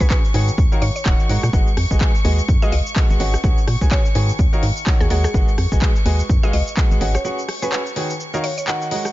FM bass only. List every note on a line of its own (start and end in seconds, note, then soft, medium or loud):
0.00 0.07 C#2 medium
0.34 0.51 G#2 medium
0.58 0.67 D#2 loud
0.82 0.90 G#2 medium
1.06 1.14 D#1 medium
1.29 1.38 G#2 medium
1.43 1.50 A#2 loud
1.53 1.62 G#1 loud
1.77 1.86 F2 medium
1.91 1.97 G#1 medium
2.25 2.41 D#2 medium
2.48 2.57 F#2 loud
2.72 2.81 C#2 loud
3.10 3.16 G#1 loud
3.20 3.36 G#1 loud
3.44 3.52 C#2 loud
3.68 3.76 A#2 loud
3.81 3.88 C#2 medium
4.15 4.31 G#2 medium
4.39 4.48 D#2 loud
4.63 4.71 G#2 loud
5.00 5.07 D#2 loud
5.10 5.27 D#2 loud
5.34 5.43 G#1 loud
5.58 5.67 F2 loud
5.72 5.78 G#1 medium
6.06 6.22 D#2 medium
6.29 6.38 F#2 loud
6.53 6.62 C#2 loud
6.91 6.97 G#1 loud
7.01 7.17 G#1 loud